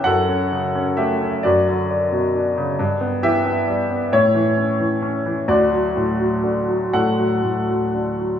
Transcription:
<<
  \new Staff \with { instrumentName = "Grand piano" } { \time 6/8 \key d \major \tempo 4. = 43 <a' fis''>4 <g' e''>8 <fis' d''>4 r8 | r8 <g' e''>4 <e' cis''>4. | <fis' d''>4. <a' fis''>4 r8 | }
  \new Staff \with { instrumentName = "Grand piano" } { \clef bass \time 6/8 \key d \major fis,16 cis'16 cis16 cis'16 a16 cis'16 fis,16 d16 d''16 b,16 d'16 cis16 | g,16 b16 e16 b16 g16 b16 a,16 e16 cis'16 e16 cis'16 e16 | d,16 fis16 a,16 fis16 d16 fis16 a,16 fis16 a,16 fis16 d16 fis16 | }
>>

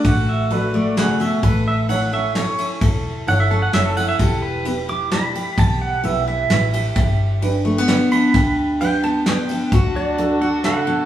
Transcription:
<<
  \new Staff \with { instrumentName = "Pedal steel guitar" } { \time 3/4 \key d \major \tempo 4 = 130 fis''8 e''8 b'8 d''8 fis''8 e''8 | b'8 e''8 fis''8 e''8 cis''8. r16 | r4 fis''16 e''16 a'16 fis''16 e''16 a'16 fis''16 e''16 | a'8 b'8 r8 d'''8 b''4 |
a''8 fis''8 e''8 e''4.~ | e''4. r4 b''8~ | b''4 g''8 a''8 g''4 | r8 <fis' d''>4 <a' fis''>8 <a' fis''>4 | }
  \new Staff \with { instrumentName = "Upright piano" } { \time 3/4 \key d \major r4 <fis' a' d''>4 <fis' a' d''>4 | r4 <e' a' cis''>4 <e' a' cis''>4 | r4 <e' a' cis''>4 <e' a' cis''>4 | r4 <e' g' b'>4 <e' g' d''>4 |
r4 <e' g' b'>4 <e' g' b'>4 | r4 <d' g' b'>4 <d' g' b'>4 | r4 <d' g' b'>4 <d' g' b'>4 | r4 <d' fis' a'>4 <d' fis' a'>4 | }
  \new Staff \with { instrumentName = "Violin section" } { \time 3/4 \key d \major r2. | r2. | r2. | r2. |
r2. | r2. | r2. | <d' fis' a'>2. | }
  \new Staff \with { instrumentName = "Steel-string acoustic guitar" } { \time 3/4 \key d \major << { <a fis'>4. a4. | a'4. cis'4 e'8 | a'4. cis'4 e'8 | g'4. e'4 g'8 |
g'4. e'4 g'8 | g'4. a16 b8. d'8 | g'4. b4 d'8 | fis'8 d'4 fis'4. | } \\ { d4 fis4 cis8 b,8 | a,4 e4 a,4 | a,4 e4 a,4 | e4 b4 b,4 |
e4 b4 b,4 | g,4 g4 d4 | g,4 g4 d4 | d4 fis4 cis8 b,8 | } >> }
  \new Staff \with { instrumentName = "Fingered electric bass" } { \clef bass \time 3/4 \key d \major a,,2. | a,,2. | e,,4 g,,4 fis,,4 | e,,2. |
b,,4 b,,4 a,,4 | g,,2. | d,2. | d,2. | }
  \new DrumStaff \with { instrumentName = "Drums" } \drummode { \time 3/4 <bd cymr>4 cymr4 <cymr sn>8 cymr8 | <bd cymr>4 cymr4 <cymr sn>8 cymr8 | <bd cymr>4 cymr4 <cymr sn>8 cymr8 | <bd cymr>4 cymr4 <cymr sn>8 cymr8 |
<bd cymr>4 cymr4 <cymr sn>8 cymr8 | <bd cymr>4 cymr4 <cymr sn>8 cymr8 | <bd cymr>4 cymr4 <cymr sn>8 cymr8 | <hh bd>4 hh4 <hh sn>4 | }
>>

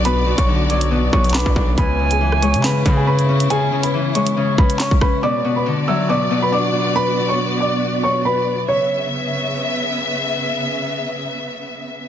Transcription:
<<
  \new Staff \with { instrumentName = "Flute" } { \time 4/4 \key cis \phrygian \tempo 4 = 139 r1 | gis''2~ gis''8 b''4. | r1 | r1 |
r1 | r1 | r1 | }
  \new Staff \with { instrumentName = "Grand piano" } { \time 4/4 \key cis \phrygian <b' b''>8. <cis'' cis'''>16 r8 <d'' d'''>4 <cis'' cis'''>8 <b' b''>4 | <b' b''>8. <gis' gis''>16 r8 <cis'' cis'''>8 <b' b''>8. <gis' gis''>16 <b' b''>4 | <gis' gis''>8. <b' b''>16 r8 <cis'' cis'''>4 <b' b''>8 <cis'' cis'''>8 <b' b''>8 | <d'' d'''>8. <b' b''>16 r8 <e'' e'''>8 <d'' d'''>8. <b' b''>16 <d'' d'''>4 |
<b' b''>8. <cis'' cis'''>16 r8 <d'' d'''>4 <cis'' cis'''>8 <b' b''>4 | cis''2. r4 | r1 | }
  \new Staff \with { instrumentName = "String section" } { \time 4/4 \key cis \phrygian << { d''1 | <cis e'>1~ | <cis e'>1 | <b d''>1~ |
<b d''>1 | <cis b e''>1~ | <cis b e''>1 | } \\ { <b fis'>1~ | <b fis'>1~ | <b fis'>1 | fis'1~ |
fis'1 | r1 | r1 | } >> }
  \new Staff \with { instrumentName = "Harp" } { \clef bass \time 4/4 \key cis \phrygian <b, d'>8 b,8 d8 fis8 b,8 b,8 d'8 d'8 | cis8 cis8 e8 gis8 cis8 cis8 cis'8 cis'8 | cis8 cis8 e8 gis8 cis8 cis8 cis'8 cis'8 | b,8 b,8 d8 fis8 b,8 b,8 d'8 d'8~ |
d'2 r2 | r1 | r1 | }
  \new Staff \with { instrumentName = "808-style bass" } { \clef bass \time 4/4 \key cis \phrygian b,,8. b,,4.~ b,,16 b,,8. b,,16 b,,8 | cis,4.~ cis,16 cis8. cis4. | r1 | r1 |
r1 | r1 | r1 | }
  \new DrumStaff \with { instrumentName = "Drums" } \drummode { \time 4/4 hh8. <hh bd>16 r8 hh16 hh16 r8 bd16 hh32 hh32 <hc hh sn>32 hh32 bd16 bd8 | <hh bd>8. hh16 r16 ss16 hh16 hh16 <hc sn>8 <hh bd>8 r16 hh8 hh16 | hh8. hh16 r8 hh16 hh16 r8 bd16 hh16 <hc hh sn>16 bd16 <bd ss>8 | r4 r4 r4 r4 |
r4 r4 r4 r4 | r4 r4 r4 r4 | r4 r4 r4 r4 | }
>>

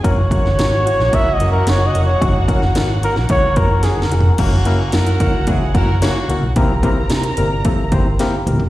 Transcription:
<<
  \new Staff \with { instrumentName = "Violin section" } { \time 4/4 \key fis \mixolydian \tempo 4 = 110 <fis' fis''>1~ | <fis' fis''>1 | <fis' fis''>1 | <bes' bes''>1 | }
  \new Staff \with { instrumentName = "Trumpet" } { \time 4/4 \key fis \mixolydian cis''2 \tuplet 3/2 { e''8 dis''8 ais'8 cis''8 dis''8 cis''8 } | r4. ais'8 cis''8 ais'8 \tuplet 3/2 { gis'8 ais'4 } | r1 | r1 | }
  \new Staff \with { instrumentName = "Horn section" } { \time 4/4 \key fis \mixolydian <ais cis' fis'>1~ | <ais cis' fis'>2.~ <ais cis' fis'>8 r8 | <ais cis' fis'>4 <e' fis' ais'>4 <cis' e' gis'>8 <e' fis' ais'>8 <ais cis' fis'>8. r16 | r1 | }
  \new Staff \with { instrumentName = "Reed electric piano" } { \time 4/4 \key fis \mixolydian << { r1 | r1 | r1 | c4. d''8 e''8 g''8 bes''4 | } \\ { <cis' e' fis' ais'>8 <cis' e' fis' ais'>8 <cis' e' fis' ais'>8 <cis' e' fis' cis''>8 <cis' e' fis' ais'>8 <cis' e' fis' ais'>8 <cis' e' fis' ais'>8 <cis' e' fis' ais'>8 | <cis' e' fis' cis''>8 <cis' e' fis' ais'>8 <cis' e' fis' ais'>8 <cis' e' fis' ais'>8 <cis' e' fis' cis''>8 <cis' e' fis' ais'>8 <cis' e' fis' ais'>8 <cis' e' fis' gis'>8 | <ais cis' e' fis' ais'>8 <ais cis' e' fis' ais'>8 <ais cis' e' fis' ais'>8 <ais cis' e' fis' ais'>8 <ais cis' e' fis' cis''>8 <ais cis' e' fis' ais'>8 <ais cis' e' fis' cis''>8 <ais cis' e' fis' ais'>8 | <bes c' e' g' bes'>8 <bes c' e' g' bes'>8 <bes c' e' g' c''>8 <bes c' e' g' bes'>8 <bes c' e' g' a'>8 <bes c' e' g' c''>8 <bes c' e' g' bes'>8 <bes c' e' g' bes'>8 | } >> }
  \new Staff \with { instrumentName = "Fingered electric bass" } { \clef bass \time 4/4 \key fis \mixolydian fis,,8 r16 fis,,16 gis,,8. ais,,16 cis,8 fis,8 fis,,8 eis,,8 | fis,,8 r16 fis,,16 gis,,8. ais,,16 cis,8 fis,8. fis,,16 eis,,8 | fis,,4 fis,8 cis,4 fis,,8. r16 cis,16 b,,16 | c,4 c8 g,,4 g,,8. r16 d,16 e,,16 | }
  \new DrumStaff \with { instrumentName = "Drums" } \drummode { \time 4/4 <hh bd>8 <hh bd>16 sn16 <hh sn>8 hh16 sn16 <hh bd>8 hh8 <hh sn>8 hh8 | <hh bd>8 <hh bd>16 sn16 <hh sn>8 hh16 sn16 <hh bd>8 <hh bd>8 \tuplet 3/2 { <hh sn>16 r16 sn16 hh16 tomfh16 r16 } | <cymc hh bd>8 hh8 <hh sn>16 hh16 <hh bd>8 <hh bd>8 <hh bd>8 <hh sn>8 hh8 | <hh bd>8 <hh bd>8 <hh sn>16 hh16 hh8 <hh bd>8 <hh bd>8 <hh sn>8 <hh toml>16 tomfh16 | }
>>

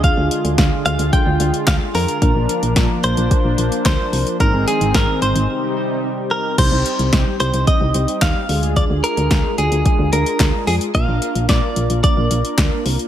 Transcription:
<<
  \new Staff \with { instrumentName = "Clean electric guitar" } { \time 4/4 \key c \minor \tempo 4 = 110 f''4. f''8 g''4 f''8 bes'8~ | bes'4. c''4. c''4 | bes'8 aes'8 bes'8 c''4. r8 bes'8 | c''4. c''8 ees''4 f''4 |
d''8 bes'4 aes'4 bes'4 aes'8 | f''4 d''4 d''4. r8 | }
  \new Staff \with { instrumentName = "Analog polysynth" } { \time 4/4 \key c \minor <d' f' aes'>1 | <d' f' bes'>1 | <c' ees' aes'>2 <c' ees' g'>2 | <g c' ees' g'>2.~ <g c' ees' g'>8 <aes d' f' aes'>8~ |
<aes d' f' aes'>1 | <bes d' bes'>1 | }
  \new Staff \with { instrumentName = "Analog synth pad" } { \clef bass \time 4/4 \key c \minor <d aes f'>1 | <f bes d'>1 | <ees aes c'>2 <c g ees'>2 | r1 |
r1 | r1 | }
  \new Staff \with { instrumentName = "FM bass" } { \clef bass \time 4/4 \key c \minor d,16 d,16 r16 d,16 d,16 r16 d,16 d,16 r16 d,16 d,16 r16 d,16 r16 f,16 r16 | bes,,16 bes,,16 r16 bes,,16 bes,,16 r16 bes,,16 bes,,16 r16 bes,,16 bes,,16 r16 d,16 r16 c,16 r16 | aes,,16 aes,,16 r16 aes,,16 aes,,16 r16 aes,,16 aes,,16 r2 | c,16 c,16 r16 c,16 c,16 r16 c,16 c,16 r16 c,16 c,16 r16 ees,16 r16 d,8~ |
d,16 d,16 r16 d,16 d,16 r16 d,16 d,16 r16 d,16 d,16 r16 d,16 r16 f,16 r16 | bes,,16 bes,,16 r16 bes,,16 bes,,16 r16 bes,,16 bes,,16 r16 bes,,16 bes,,16 r16 d,16 r16 c,16 r16 | }
  \new DrumStaff \with { instrumentName = "Drums" } \drummode { \time 4/4 <hh bd>8 hh16 hh16 <hh bd sn>8 hh16 hh16 <hh bd>8 hh16 hh16 <hc hh bd sn>8 hho16 hh16 | <hh bd>8 hh16 hh16 <hh bd sn>8 hh16 hh16 <hh bd>8 hh16 hh16 <hc hh bd sn>8 hho16 hh16 | <hh bd>8 hh16 hh16 <hh bd sn>8 hh16 hh16 r4 r4 | <cymc hh bd>8 hh16 hh16 <hh bd sn>8 hh16 hh16 <hh bd>8 hh16 hh16 <hc hh bd sn>8 hho16 hh16 |
<hh bd>8 hh16 hh16 <hh bd sn>8 hh16 hh16 <hh bd>8 hh16 hh16 <hc hh bd sn>8 hho16 hh16 | <hh bd>8 hh16 hh16 <hh bd sn>8 hh16 hh16 <hh bd>8 hh16 hh16 <hc hh bd sn>8 hho16 hh16 | }
>>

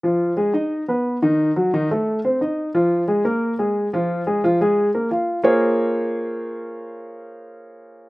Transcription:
\new Staff \with { instrumentName = "Grand piano" } { \time 4/4 \key bes \minor \tempo 4 = 178 <f f'>4 <aes aes'>8 <ees' ees''>4 <b b'>4 <dis dis'>8~ | <dis dis'>8 <ges ges'>8 <ees ees'>8 <a a'>4 <c' c''>8 <ees' ees''>4 | <f f'>4 <aes aes'>8 <bes bes'>4 <aes aes'>4 <f f'>8~ | <f f'>8 <aes aes'>8 <f f'>8 <aes aes'>4 <bes bes'>8 <f' f''>4 |
<bes f' aes' bes' c'' des''>1~ | <bes f' aes' bes' c'' des''>1 | }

